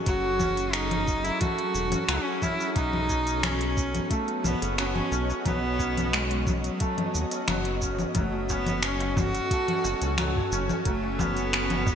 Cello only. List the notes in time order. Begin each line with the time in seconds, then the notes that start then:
0.06 F#4
0.74 D#4
1.24 E4
1.41 F#4
2.08 C#4
2.43 E4
2.76 D#4
3.43 C#4
4.11 A3
4.44 B3
4.79 C#4
4.86 B3
4.94 C#4
5.46 B3
6.13 G#3
6.46 F#3
6.53 G#3
6.61 F#3
8.16 A3
8.50 B3
8.84 C#4
9.19 F#4
10.86 A3
11.19 B3